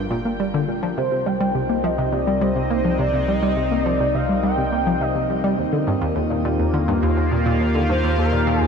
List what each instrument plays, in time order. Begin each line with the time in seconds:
Already playing: sub bass G1, analog synth pad G3 D4 F4 A#4 G5
0.11 synth arpeggio sound A#2
0.25 synth arpeggio sound A#3
0.40 synth arpeggio sound G3
0.54 synth arpeggio sound D3
0.68 synth arpeggio sound A#2
0.83 synth arpeggio sound F3
0.97 sub bass C2, analog synth pad C3, synth arpeggio sound C3, analog synth lead C5
1.11 synth arpeggio sound C3, analog synth pad C4 D#5
1.22 analog synth pad D#4
1.26 synth arpeggio sound G3, analog synth lead G5
1.41 synth arpeggio sound G3
1.55 synth arpeggio sound C3
1.69 synth arpeggio sound A#3
1.84 synth arpeggio sound F3, analog synth lead D#5
1.98 synth arpeggio sound C3
2.12 synth arpeggio sound C3, analog synth lead D5
2.27 synth arpeggio sound G3
2.41 synth arpeggio sound G3, analog synth lead C5
2.56 synth arpeggio sound C3
2.70 synth arpeggio sound A#3
2.85 synth arpeggio sound F3
2.99 synth arpeggio sound C3, analog synth lead D5
3.14 synth arpeggio sound C3
3.28 synth arpeggio sound G3, analog synth lead D#5
3.43 synth arpeggio sound G3
3.57 synth arpeggio sound C3
3.71 synth arpeggio sound A#3
3.84 synth arpeggio sound F3, analog synth lead D5
4.00 synth arpeggio sound C3
4.15 synth arpeggio sound C3, analog synth lead F5
4.29 synth arpeggio sound G3
4.43 synth arpeggio sound G3, analog synth lead G5
4.58 synth arpeggio sound C3
4.72 synth arpeggio sound A#3
4.87 synth arpeggio sound F3
5.01 synth arpeggio sound C3, analog synth lead D#5
5.15 synth arpeggio sound C3
5.30 synth arpeggio sound G3
5.44 synth arpeggio sound G3
5.58 synth arpeggio sound D#2, sub bass D#2, analog synth pad D#3
5.73 synth arpeggio sound D3
5.77 analog synth pad A#3
5.86 synth arpeggio sound G2, analog synth pad F4
6.01 synth arpeggio sound D#2, analog synth pad G4 F5
6.16 synth arpeggio sound D#2
6.30 synth arpeggio sound A#2
6.45 synth arpeggio sound A#2
6.59 synth arpeggio sound D#2
6.74 synth arpeggio sound D3
6.88 synth arpeggio sound G2
7.03 synth arpeggio sound D#2
7.17 synth arpeggio sound D#2
7.32 synth arpeggio sound A#2
7.46 synth arpeggio sound A#2
7.60 synth arpeggio sound D#2
7.75 synth arpeggio sound D3
7.89 synth arpeggio sound G2, analog synth lead C5
8.04 synth arpeggio sound D#2
8.18 synth arpeggio sound D#2, analog synth lead A#4
8.33 synth arpeggio sound A#2
8.47 synth arpeggio sound A#2
8.61 synth arpeggio sound D#2, analog synth lead G#4